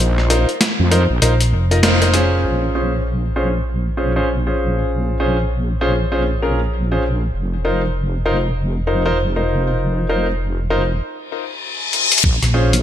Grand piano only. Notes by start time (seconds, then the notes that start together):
Already playing: D#4 F4 A#4 C5
0.30 D#4 F4 A#4 C5
0.91 D#4 F4 A#4 C5
1.22 D#4 F4 A#4 C5
1.71 D#4 F4 A#4 D#5
1.83 D#4 F4 A#4 C5
2.02 D#4 F4 A#4 C5
2.14 C#4 F4 G#4 C5
2.75 C#4 F4 G#4 C5
3.36 C#4 F4 G#4 C5
3.97 C#4 F4 G#4 C5
4.16 C#4 F4 G#4 C5
4.47 C#4 F4 G#4 C5
5.20 C#4 F4 G#4 C5
5.81 C#4 F4 G#4 C5
6.12 C#4 F4 G#4 C5
6.42 C#4 F4 G#4 A#4
6.92 C#4 F4 G#4 C5
7.65 D#4 F4 A#4 C5
8.26 D#4 F4 A#4 C5
8.87 D#4 F4 A#4 C5
9.06 D#4 F4 A#4 C5
9.36 D#4 F4 A#4 C5
10.09 D#4 F4 A#4 C5
10.70 D#4 F4 A#4 C5
12.54 C#4 F4 G#4 C5